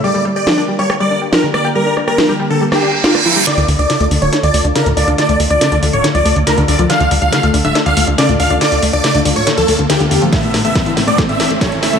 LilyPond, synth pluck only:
\new Staff \with { instrumentName = "Synth pluck" } { \clef bass \time 4/4 \key d \minor \tempo 4 = 140 g16 g16 g16 g'16 f16 d'16 g16 g16 g'16 g16 d'16 g'16 f16 d16 g'16 g'16 | g16 d'16 d'16 g'16 f16 g16 g16 d16 g16 bes16 d'16 g'16 g'16 d'16 f16 g16 | d16 d16 d16 d'16 cis16 a16 d16 d16 d'16 d16 a16 d'16 cis16 a,16 d'16 d'16 | d16 a16 a16 d'16 cis16 d16 d16 a,16 d16 f16 a16 d16 d,16 d16 d16 f16 |
d16 d16 d16 d'16 cis16 a16 d16 d16 d'16 d16 a16 d'16 cis16 a,16 d'16 d'16 | d16 a16 a16 d'16 cis16 d16 d16 a,16 d16 f16 a16 d16 d,16 d16 d16 f16 | a,16 a,16 a,16 a16 g,16 e16 a,16 a,16 a16 a,16 e16 a16 g,16 e,16 a16 a16 | }